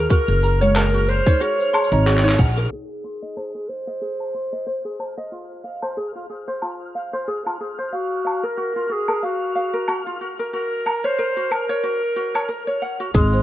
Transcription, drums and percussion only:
0.10 kick, closed hi-hat, shaker
0.29 shaker
0.42 shaker
0.61 closed hi-hat, shaker
0.75 clap, closed hi-hat, low woodblock, shaker
0.80 shaker
0.85 shaker
0.89 shaker
0.95 shaker
1.08 shaker
1.26 kick, closed hi-hat, shaker
1.41 closed hi-hat, shaker
1.60 shaker
1.74 low woodblock
1.84 shaker
1.93 shaker
2.07 clap, closed hi-hat, shaker
2.17 clap
2.24 shaker
2.29 clap
2.39 kick, shaker
2.56 closed hi-hat, shaker
3.37 low woodblock
4.20 low woodblock
5.00 low woodblock
5.82 low woodblock
6.62 low woodblock
7.47 low woodblock
8.27 low woodblock
9.08 low woodblock
9.88 low woodblock
10.87 low woodblock
11.52 low woodblock
12.35 low woodblock
13.15 kick, closed hi-hat, shaker
13.33 shaker

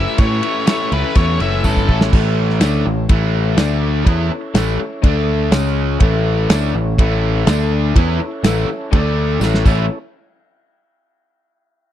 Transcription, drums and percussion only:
0.18 kick, ride
0.43 ride
0.67 snare, ride, tambourine
0.92 ride
1.15 kick, ride
1.40 ride
1.64 kick, tambourine
1.77 kick
1.89 kick
2.01 snare
2.13 kick, crash
2.50 snare
2.61 snare, ride bell, tambourine
3.09 kick, ride bell
3.57 snare, ride bell, tambourine
4.06 kick, ride bell
4.55 snare, ride bell, tambourine
5.04 kick, ride bell
5.52 snare, ride bell, tambourine
6.00 kick, ride bell
6.50 snare, ride bell, tambourine
6.98 kick, ride bell
7.47 snare, ride bell, tambourine
7.96 kick, ride bell
8.44 snare, ride bell, tambourine
8.93 kick, ride bell
9.41 snare, tambourine
9.54 snare
9.66 kick, crash, tambourine

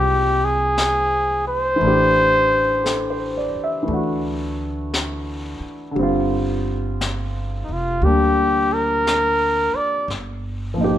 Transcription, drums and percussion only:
0.77 brush sweep, snare, hi-hat pedal
1.82 brush sweep
2.86 brush sweep, snare, hi-hat pedal
3.90 brush sweep
4.93 brush sweep, snare, hi-hat pedal
5.97 brush sweep
7.01 brush sweep, snare, hi-hat pedal
8.03 brush sweep
9.07 brush sweep, snare, hi-hat pedal
10.10 brush sweep, snare

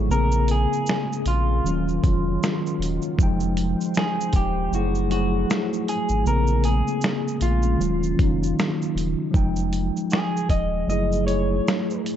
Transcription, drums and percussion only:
0.11 shaker
0.32 shaker
0.48 closed hi-hat, shaker
0.73 shaker
0.86 finger snap, snare, shaker
1.13 shaker
1.26 closed hi-hat, shaker
1.66 shaker
1.88 shaker
2.04 kick, closed hi-hat, shaker
2.43 finger snap, snare, shaker
2.67 shaker
2.82 closed hi-hat, shaker
3.02 shaker
3.19 kick, shaker
3.40 shaker
3.57 closed hi-hat, shaker
3.81 shaker
3.94 finger snap, snare, shaker
4.21 shaker
4.33 kick, closed hi-hat, shaker
4.73 shaker
4.95 shaker
5.11 closed hi-hat, shaker
5.50 finger snap, snare, shaker
5.73 shaker
5.88 closed hi-hat, shaker
6.09 shaker
6.26 shaker
6.47 shaker
6.64 closed hi-hat, shaker
6.88 shaker
7.01 finger snap, snare, shaker
7.28 shaker
7.41 closed hi-hat, shaker
7.63 shaker
7.81 shaker
8.03 shaker
8.19 kick, closed hi-hat, shaker
8.43 shaker
8.59 finger snap, snare, shaker
8.82 shaker
8.98 closed hi-hat, shaker
9.34 kick, shaker
9.56 shaker
9.73 closed hi-hat, shaker
9.97 shaker
10.10 finger snap, snare, shaker
10.37 shaker
10.49 kick, closed hi-hat, shaker
10.90 shaker
11.12 shaker
11.28 closed hi-hat, shaker
11.68 finger snap, snare, shaker
11.90 shaker
12.06 closed hi-hat, shaker

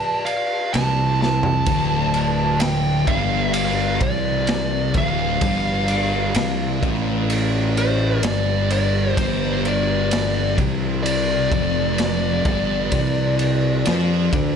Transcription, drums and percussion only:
0.26 ride
0.74 snare, ride
1.22 snare
1.43 floor tom
1.66 kick, ride
2.14 ride
2.60 snare, ride
3.07 kick, ride
3.54 ride
4.00 kick, ride
4.47 snare, ride
4.94 kick, ride
5.41 kick, ride
5.88 ride
6.34 snare, ride
6.83 kick, ride
7.30 ride
7.77 ride
8.23 snare, ride
8.70 ride
9.17 kick, ride
9.65 ride
10.11 snare, ride
10.58 kick, ride
11.06 ride
11.52 kick, ride
11.98 snare, ride
12.45 kick, ride
12.92 kick, ride
13.39 ride
13.85 snare, ride
14.33 kick, ride

